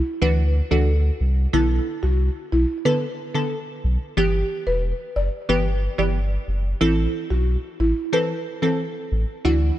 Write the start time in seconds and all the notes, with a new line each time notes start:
0.22 D2 E3 D4 F#4 B4
0.71 D2 E3 D4 F#4 A4
1.21 C2
1.53 B1 D3 B3 E4 A4
2.03 C2 F#4
2.52 B1 E4
2.85 D3 B3 A4 B4
3.35 D3 B3 A4
3.84 B1
4.17 G1 E3 B3 G4
4.67 E1 B4
5.16 F#1 D5
5.49 G1 E3 B3 G4 B4
5.98 G1 E3 B3 G4 D5
6.48 F#1
6.81 A1 E3 C4 E4 A4
7.30 B1 F#4
7.80 A1 E4
8.13 E3 C4 A4 B4
8.62 E3 C4 A4
9.12 A1
9.45 D2 E3 D4 E4 F#4